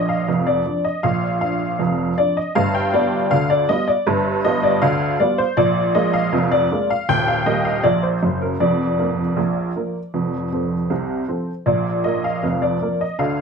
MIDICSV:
0, 0, Header, 1, 2, 480
1, 0, Start_track
1, 0, Key_signature, -2, "major"
1, 0, Tempo, 756620
1, 659, Time_signature, 2, 2, 24, 8
1, 4497, Tempo, 763359
1, 8473, End_track
2, 0, Start_track
2, 0, Title_t, "Honky-tonk piano"
2, 0, Program_c, 0, 3
2, 0, Control_c, 0, 64, 127
2, 0, Note_on_c, 0, 34, 62
2, 0, Note_on_c, 0, 46, 69
2, 0, Note_on_c, 0, 53, 43
2, 0, Note_on_c, 0, 62, 45
2, 0, Note_on_c, 0, 74, 71
2, 0, Note_on_c, 0, 75, 71
2, 56, Note_on_c, 0, 77, 69
2, 70, Note_off_c, 0, 53, 0
2, 72, Note_off_c, 0, 62, 0
2, 180, Note_on_c, 0, 29, 65
2, 181, Note_on_c, 0, 41, 65
2, 183, Control_c, 0, 64, 0
2, 187, Note_off_c, 0, 46, 0
2, 190, Note_off_c, 0, 74, 0
2, 190, Note_off_c, 0, 75, 0
2, 192, Note_off_c, 0, 34, 0
2, 296, Note_on_c, 0, 74, 71
2, 297, Note_off_c, 0, 77, 0
2, 384, Note_off_c, 0, 29, 0
2, 384, Note_off_c, 0, 41, 0
2, 417, Note_on_c, 0, 53, 40
2, 421, Note_on_c, 0, 62, 40
2, 536, Note_on_c, 0, 75, 65
2, 537, Note_off_c, 0, 74, 0
2, 549, Note_off_c, 0, 53, 0
2, 552, Note_off_c, 0, 62, 0
2, 655, Note_on_c, 0, 77, 78
2, 657, Note_on_c, 0, 34, 64
2, 658, Note_off_c, 0, 75, 0
2, 659, Note_on_c, 0, 46, 71
2, 774, Control_c, 0, 64, 127
2, 862, Note_off_c, 0, 34, 0
2, 863, Note_off_c, 0, 46, 0
2, 886, Note_off_c, 0, 77, 0
2, 896, Note_on_c, 0, 53, 40
2, 896, Note_on_c, 0, 77, 75
2, 898, Note_on_c, 0, 62, 41
2, 1029, Note_off_c, 0, 53, 0
2, 1031, Note_off_c, 0, 62, 0
2, 1138, Note_on_c, 0, 29, 69
2, 1138, Note_on_c, 0, 41, 63
2, 1148, Control_c, 0, 64, 0
2, 1343, Note_off_c, 0, 29, 0
2, 1343, Note_off_c, 0, 41, 0
2, 1379, Note_off_c, 0, 77, 0
2, 1382, Note_on_c, 0, 74, 73
2, 1385, Note_on_c, 0, 53, 38
2, 1386, Note_on_c, 0, 62, 45
2, 1501, Note_off_c, 0, 74, 0
2, 1503, Note_on_c, 0, 75, 67
2, 1516, Note_off_c, 0, 53, 0
2, 1517, Note_off_c, 0, 62, 0
2, 1620, Note_on_c, 0, 77, 90
2, 1621, Note_on_c, 0, 31, 66
2, 1622, Note_off_c, 0, 75, 0
2, 1623, Note_on_c, 0, 43, 78
2, 1733, Control_c, 0, 64, 127
2, 1740, Note_off_c, 0, 77, 0
2, 1742, Note_on_c, 0, 79, 75
2, 1824, Note_off_c, 0, 31, 0
2, 1826, Note_off_c, 0, 43, 0
2, 1861, Note_off_c, 0, 79, 0
2, 1862, Note_on_c, 0, 74, 75
2, 1864, Note_on_c, 0, 55, 44
2, 1865, Note_on_c, 0, 59, 49
2, 1866, Note_on_c, 0, 65, 49
2, 1995, Note_off_c, 0, 55, 0
2, 1996, Note_off_c, 0, 59, 0
2, 1996, Note_off_c, 0, 65, 0
2, 2098, Note_on_c, 0, 77, 90
2, 2101, Note_off_c, 0, 74, 0
2, 2102, Note_on_c, 0, 38, 72
2, 2103, Note_on_c, 0, 50, 71
2, 2105, Control_c, 0, 64, 0
2, 2220, Note_off_c, 0, 77, 0
2, 2220, Note_on_c, 0, 74, 81
2, 2306, Note_off_c, 0, 38, 0
2, 2307, Note_off_c, 0, 50, 0
2, 2340, Note_on_c, 0, 75, 87
2, 2341, Note_off_c, 0, 74, 0
2, 2343, Note_on_c, 0, 55, 47
2, 2347, Note_on_c, 0, 59, 45
2, 2349, Note_on_c, 0, 65, 50
2, 2459, Note_on_c, 0, 74, 74
2, 2461, Note_off_c, 0, 75, 0
2, 2474, Note_off_c, 0, 55, 0
2, 2478, Note_off_c, 0, 59, 0
2, 2479, Note_off_c, 0, 65, 0
2, 2579, Note_on_c, 0, 71, 84
2, 2580, Note_off_c, 0, 74, 0
2, 2581, Note_on_c, 0, 31, 74
2, 2582, Note_on_c, 0, 43, 81
2, 2722, Control_c, 0, 64, 127
2, 2785, Note_off_c, 0, 31, 0
2, 2786, Note_off_c, 0, 43, 0
2, 2820, Note_off_c, 0, 71, 0
2, 2820, Note_on_c, 0, 75, 87
2, 2822, Note_on_c, 0, 55, 47
2, 2826, Note_on_c, 0, 59, 50
2, 2829, Note_on_c, 0, 65, 55
2, 2939, Note_on_c, 0, 74, 70
2, 2940, Note_off_c, 0, 75, 0
2, 2954, Note_off_c, 0, 55, 0
2, 2956, Note_off_c, 0, 59, 0
2, 2958, Note_off_c, 0, 65, 0
2, 3055, Note_on_c, 0, 77, 90
2, 3059, Note_on_c, 0, 38, 81
2, 3060, Note_off_c, 0, 74, 0
2, 3060, Note_on_c, 0, 50, 83
2, 3067, Control_c, 0, 64, 0
2, 3263, Note_off_c, 0, 38, 0
2, 3264, Note_off_c, 0, 50, 0
2, 3297, Note_off_c, 0, 77, 0
2, 3298, Note_on_c, 0, 74, 79
2, 3300, Note_on_c, 0, 55, 49
2, 3305, Note_on_c, 0, 59, 54
2, 3305, Note_on_c, 0, 65, 56
2, 3415, Note_on_c, 0, 72, 80
2, 3419, Note_off_c, 0, 74, 0
2, 3432, Note_off_c, 0, 55, 0
2, 3435, Note_off_c, 0, 59, 0
2, 3435, Note_off_c, 0, 65, 0
2, 3534, Note_on_c, 0, 74, 93
2, 3535, Note_on_c, 0, 46, 87
2, 3536, Note_on_c, 0, 34, 74
2, 3537, Note_off_c, 0, 72, 0
2, 3673, Control_c, 0, 64, 127
2, 3740, Note_off_c, 0, 46, 0
2, 3741, Note_off_c, 0, 34, 0
2, 3773, Note_on_c, 0, 75, 86
2, 3775, Note_on_c, 0, 56, 52
2, 3776, Note_off_c, 0, 74, 0
2, 3776, Note_on_c, 0, 58, 49
2, 3777, Note_on_c, 0, 65, 52
2, 3892, Note_on_c, 0, 77, 81
2, 3896, Note_off_c, 0, 75, 0
2, 3907, Note_off_c, 0, 56, 0
2, 3909, Note_off_c, 0, 58, 0
2, 3909, Note_off_c, 0, 65, 0
2, 4014, Note_on_c, 0, 29, 80
2, 4015, Note_on_c, 0, 41, 81
2, 4023, Control_c, 0, 64, 0
2, 4133, Note_on_c, 0, 74, 87
2, 4135, Note_off_c, 0, 77, 0
2, 4220, Note_off_c, 0, 29, 0
2, 4220, Note_off_c, 0, 41, 0
2, 4258, Note_on_c, 0, 56, 46
2, 4260, Note_on_c, 0, 58, 45
2, 4263, Note_on_c, 0, 65, 51
2, 4376, Note_off_c, 0, 74, 0
2, 4380, Note_on_c, 0, 77, 78
2, 4390, Note_off_c, 0, 56, 0
2, 4392, Note_off_c, 0, 58, 0
2, 4394, Note_off_c, 0, 65, 0
2, 4497, Note_on_c, 0, 39, 77
2, 4498, Note_on_c, 0, 79, 95
2, 4499, Note_off_c, 0, 77, 0
2, 4500, Note_on_c, 0, 27, 75
2, 4616, Control_c, 0, 64, 127
2, 4616, Note_on_c, 0, 77, 76
2, 4617, Note_off_c, 0, 79, 0
2, 4700, Note_off_c, 0, 39, 0
2, 4702, Note_off_c, 0, 27, 0
2, 4732, Note_on_c, 0, 75, 80
2, 4733, Note_on_c, 0, 55, 41
2, 4735, Note_on_c, 0, 58, 49
2, 4736, Note_off_c, 0, 77, 0
2, 4740, Note_on_c, 0, 67, 51
2, 4848, Note_on_c, 0, 77, 74
2, 4854, Note_off_c, 0, 75, 0
2, 4866, Note_off_c, 0, 55, 0
2, 4867, Note_off_c, 0, 58, 0
2, 4871, Note_off_c, 0, 67, 0
2, 4966, Note_on_c, 0, 74, 82
2, 4967, Note_on_c, 0, 34, 69
2, 4968, Note_on_c, 0, 46, 69
2, 4972, Note_off_c, 0, 77, 0
2, 4980, Control_c, 0, 64, 0
2, 5089, Note_on_c, 0, 72, 60
2, 5091, Note_off_c, 0, 74, 0
2, 5175, Note_off_c, 0, 34, 0
2, 5176, Note_off_c, 0, 46, 0
2, 5212, Note_on_c, 0, 42, 62
2, 5215, Note_on_c, 0, 30, 61
2, 5332, Note_off_c, 0, 72, 0
2, 5332, Note_on_c, 0, 70, 58
2, 5406, Note_off_c, 0, 42, 0
2, 5407, Note_off_c, 0, 30, 0
2, 5449, Note_on_c, 0, 74, 71
2, 5450, Note_on_c, 0, 29, 59
2, 5450, Note_on_c, 0, 41, 68
2, 5454, Note_off_c, 0, 70, 0
2, 5568, Control_c, 0, 64, 127
2, 5656, Note_off_c, 0, 29, 0
2, 5656, Note_off_c, 0, 41, 0
2, 5693, Note_on_c, 0, 53, 41
2, 5693, Note_on_c, 0, 58, 39
2, 5695, Note_on_c, 0, 70, 43
2, 5826, Note_off_c, 0, 53, 0
2, 5826, Note_off_c, 0, 58, 0
2, 5827, Note_off_c, 0, 70, 0
2, 5929, Note_on_c, 0, 34, 63
2, 5929, Note_on_c, 0, 46, 57
2, 5944, Control_c, 0, 64, 0
2, 6137, Note_off_c, 0, 34, 0
2, 6137, Note_off_c, 0, 46, 0
2, 6177, Note_on_c, 0, 53, 36
2, 6180, Note_on_c, 0, 58, 37
2, 6181, Note_on_c, 0, 70, 40
2, 6309, Note_off_c, 0, 53, 0
2, 6311, Note_off_c, 0, 58, 0
2, 6312, Note_off_c, 0, 70, 0
2, 6415, Note_on_c, 0, 29, 55
2, 6415, Note_on_c, 0, 41, 61
2, 6525, Control_c, 0, 64, 127
2, 6620, Note_off_c, 0, 29, 0
2, 6620, Note_off_c, 0, 41, 0
2, 6658, Note_on_c, 0, 53, 35
2, 6659, Note_on_c, 0, 60, 32
2, 6659, Note_on_c, 0, 69, 37
2, 6790, Note_off_c, 0, 53, 0
2, 6791, Note_off_c, 0, 60, 0
2, 6791, Note_off_c, 0, 69, 0
2, 6894, Note_off_c, 0, 74, 0
2, 6894, Note_on_c, 0, 36, 59
2, 6896, Note_on_c, 0, 48, 57
2, 6904, Control_c, 0, 64, 0
2, 7100, Note_off_c, 0, 36, 0
2, 7101, Note_off_c, 0, 48, 0
2, 7133, Note_on_c, 0, 53, 36
2, 7136, Note_on_c, 0, 60, 37
2, 7138, Note_on_c, 0, 69, 41
2, 7267, Note_off_c, 0, 53, 0
2, 7269, Note_off_c, 0, 60, 0
2, 7270, Note_off_c, 0, 69, 0
2, 7371, Note_on_c, 0, 34, 61
2, 7372, Note_on_c, 0, 74, 70
2, 7373, Note_on_c, 0, 46, 69
2, 7489, Control_c, 0, 64, 127
2, 7578, Note_off_c, 0, 34, 0
2, 7579, Note_off_c, 0, 46, 0
2, 7612, Note_on_c, 0, 75, 68
2, 7615, Note_off_c, 0, 74, 0
2, 7616, Note_on_c, 0, 53, 40
2, 7616, Note_on_c, 0, 58, 41
2, 7618, Note_on_c, 0, 70, 46
2, 7735, Note_off_c, 0, 75, 0
2, 7737, Note_on_c, 0, 77, 68
2, 7748, Note_off_c, 0, 53, 0
2, 7748, Note_off_c, 0, 58, 0
2, 7750, Note_off_c, 0, 70, 0
2, 7857, Note_on_c, 0, 29, 66
2, 7859, Note_on_c, 0, 41, 62
2, 7867, Control_c, 0, 64, 0
2, 7975, Note_on_c, 0, 74, 68
2, 7978, Note_off_c, 0, 77, 0
2, 8061, Note_off_c, 0, 29, 0
2, 8062, Note_off_c, 0, 41, 0
2, 8101, Note_on_c, 0, 53, 36
2, 8103, Note_on_c, 0, 58, 43
2, 8105, Note_on_c, 0, 70, 41
2, 8216, Note_off_c, 0, 74, 0
2, 8220, Note_on_c, 0, 75, 64
2, 8232, Note_off_c, 0, 53, 0
2, 8233, Note_off_c, 0, 58, 0
2, 8235, Note_off_c, 0, 70, 0
2, 8333, Note_on_c, 0, 38, 59
2, 8333, Note_on_c, 0, 50, 70
2, 8333, Note_on_c, 0, 77, 74
2, 8339, Note_off_c, 0, 75, 0
2, 8455, Control_c, 0, 64, 127
2, 8473, Note_off_c, 0, 38, 0
2, 8473, Note_off_c, 0, 50, 0
2, 8473, Note_off_c, 0, 77, 0
2, 8473, End_track
0, 0, End_of_file